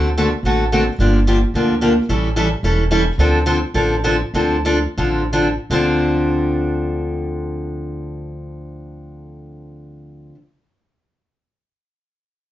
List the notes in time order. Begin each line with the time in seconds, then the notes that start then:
Already playing: D2
0.18 D3 A3 C4 F#4 A4
0.43 A1 D3 A3 C4 F#4 A4
0.72 D3 A3 C4 F#4 A4
0.99 G1 D3 F3 A#3 D4 G4
1.27 D3 F3 A#3 D4 G4
1.54 D2 D3 F3 A#3 D4 G4
1.81 D3 F3 A#3 D4 G4
2.09 A1 E3 G3 C#4 E4 A4
2.36 E3 G3 C#4 E4 A4
2.63 E1 E3 G3 C#4 E4 A4
2.91 E3 G3 C#4 E4 A4
3.18 D2 D3 F3 C4 D4 A4
3.46 D3 F3 C4 D4 A4
3.74 A1 D3 F3 C4 D4 A4
4.04 D3 F3 C4 D4 A4
4.34 D2 D3 F3 C4 D4 A4
4.65 D3 F3 C4 D4 A4
4.97 A1 D3 F3 C4 D4 A4
5.33 D3 F3 C4 D4 A4
5.70 D2 D3 F3 C4 D4 A4